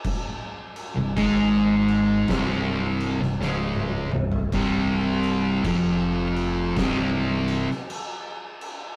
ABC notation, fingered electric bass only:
X:1
M:4/4
L:1/16
Q:"Swing" 1/4=54
K:Fdor
V:1 name="Fingered electric bass" clef=bass
z3 C,,, A,,,4 C,,,3 C,,, _D,,,2 C,,,2 | C,,,4 F,,,4 C,,,3 z4 z |]